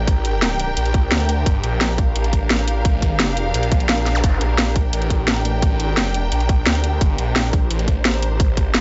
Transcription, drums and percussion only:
0.07 kick loud
0.07 closed hi-hat medium
0.25 closed hi-hat medium
0.42 snare loud
0.42 closed hi-hat medium
0.59 closed hi-hat medium
0.77 closed hi-hat medium
0.86 closed hi-hat soft
0.94 kick loud
0.94 closed hi-hat medium
1.12 snare loud
1.12 closed hi-hat medium
1.20 closed hi-hat soft
1.29 closed hi-hat medium
1.46 kick loud
1.46 closed hi-hat loud
1.64 closed hi-hat medium
1.81 snare loud
1.81 closed hi-hat medium
1.98 kick loud
1.98 closed hi-hat medium
2.16 closed hi-hat medium
2.24 closed hi-hat soft
2.33 kick medium
2.33 closed hi-hat medium
2.50 snare loud
2.50 closed hi-hat medium
2.59 closed hi-hat soft
2.68 closed hi-hat medium
2.85 kick loud
2.85 closed hi-hat loud
3.02 kick medium
3.02 closed hi-hat medium
3.20 snare loud
3.20 closed hi-hat medium
3.37 closed hi-hat medium
3.54 closed hi-hat loud
3.63 closed hi-hat soft
3.72 kick loud
3.72 closed hi-hat medium
3.80 closed hi-hat soft
3.89 snare loud
3.89 closed hi-hat medium
3.98 closed hi-hat soft
4.06 snare soft
4.06 closed hi-hat medium
4.24 kick loud
4.24 closed hi-hat loud
4.41 closed hi-hat medium
4.58 snare loud
4.58 closed hi-hat medium
4.76 kick loud
4.76 closed hi-hat medium
4.93 closed hi-hat loud
5.02 closed hi-hat soft
5.10 kick medium
5.10 closed hi-hat medium
5.28 snare loud
5.28 closed hi-hat loud
5.36 closed hi-hat soft
5.45 closed hi-hat medium
5.62 kick loud
5.62 closed hi-hat medium
5.80 closed hi-hat medium
5.97 snare loud
5.97 closed hi-hat medium
6.14 closed hi-hat medium
6.32 closed hi-hat medium
6.40 closed hi-hat soft
6.49 kick loud
6.49 closed hi-hat medium
6.66 snare loud
6.66 closed hi-hat medium
6.75 closed hi-hat soft
6.84 closed hi-hat medium
7.01 kick loud
7.01 closed hi-hat medium
7.18 closed hi-hat medium
7.36 snare loud
7.36 closed hi-hat medium
7.53 kick loud
7.53 closed hi-hat medium
7.70 closed hi-hat medium
7.79 closed hi-hat soft
7.88 kick medium
7.88 closed hi-hat medium
8.05 snare loud
8.05 closed hi-hat medium
8.14 closed hi-hat soft
8.22 closed hi-hat medium
8.40 kick loud
8.40 closed hi-hat medium
8.57 kick medium
8.57 closed hi-hat medium
8.74 snare loud
8.74 closed hi-hat medium

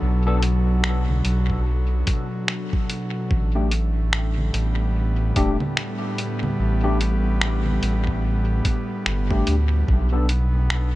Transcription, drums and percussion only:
0.43 closed hi-hat medium
0.84 finger snap medium
1.08 low conga medium
1.25 closed hi-hat medium
1.50 kick medium
2.07 kick loud
2.07 closed hi-hat medium
2.48 finger snap medium
2.73 kick loud
2.90 closed hi-hat medium
3.31 kick loud
3.71 closed hi-hat medium
4.13 finger snap medium
4.37 low conga medium
4.54 closed hi-hat medium
5.36 kick loud
5.36 closed hi-hat medium
5.60 low conga medium
5.77 finger snap medium
6.18 closed hi-hat medium
6.43 low conga medium
7.01 closed hi-hat soft
7.41 finger snap medium
7.66 low conga medium
7.83 closed hi-hat soft
8.07 kick medium
8.65 kick loud
8.65 closed hi-hat medium
9.06 finger snap medium
9.31 kick loud
9.47 closed hi-hat medium
9.88 kick loud
10.29 closed hi-hat soft
10.70 finger snap medium

